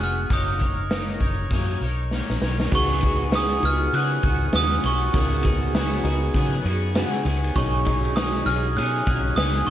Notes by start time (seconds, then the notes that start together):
0.00 F1 B3 F#4 G#4 F6, closed hi-hat
0.30 F#1 F#3 A#3 D#4 A#4 C#5 D#6, kick, closed hi-hat
0.59 D#4 A#4 C#5, kick, closed hi-hat
0.90 A#3 D#4 A#4 C#5, snare, closed hi-hat
1.20 F#1 D#4 A#4 C#5, kick, closed hi-hat
1.50 F#2 F#3 A#3 D#4 A#4 C#5, kick, closed hi-hat
1.81 B1 A#4 C#5, closed hi-hat
1.86 D#4
2.11 A#3 D#4 A#4, snare
2.16 C#5
2.30 A#1, snare
2.42 B1 A#4 C#5, snare
2.46 D#4
2.60 snare
2.71 C#2 C#3 F#3 B3 D#4 F#4 G#4 B4 C#6, kick, crash
3.01 D#4 F#4 G#4 B4, kick, ride
3.05 B3 F#4
3.32 C#3 F#3 B3 F#4 G#4 D#6, snare, ride
3.62 C#2 D#4 F4 F#4 G#4 B4 F6, ride
3.67 B3 F#4
3.93 C#3 F#3 B3 F#4 F#6, ride
3.97 G#4
4.23 C#2 F#4 G#4, kick, ride
4.27 B3
4.53 D#2 C#3 F#3 B3 F#4 G#4 D#6, snare, ride
4.83 B1 B3 F#4 G#4 C#6, open hi-hat, ride
5.13 C#2 C#3 F#3 B3 D#4 F#4 G#4 A#4, kick, hi-hat pedal, ride
5.43 D#4 F#4 G#4 B4, kick, ride
5.47 B3
5.63 ride
5.75 C#3 F#3 B3 F#4 G#4, snare, ride
6.03 C#2 D#4 F#4 G#4 B4, ride
6.07 B3 F#4
6.34 C#3 F#3 B3 F#4, kick, ride
6.38 G#4
6.65 F#2 B3 F#4 G#4, ride
6.95 C#3 F#3 B3 F#4 G#4, snare, ride
7.25 C#2 B3 F#4 G#4, ride
7.44 ride
7.55 B1 B2 D#3 F#3 C#4 D#4 F#4 G#4 C#5 C#6, kick, ride
7.85 F#3 C#4 D#4 F#4 G#4 C#5, kick, ride
8.05 ride
8.15 B2 D#3 F#3 C#4 D#4 G#4 D#6, snare, ride
8.45 B1 F#3 C#4 D#4 F#4 G#4 C#5 F6, snare, ride
8.76 B2 F#3 C#4 D#4 G#4 F#6, ride
9.06 B1 F#3 C#4 D#4 G#4, kick, ride
9.36 C#2 B2 D#3 F#3 C#4 D#4 G#4 D#6, snare, ride
9.66 G#4 C#6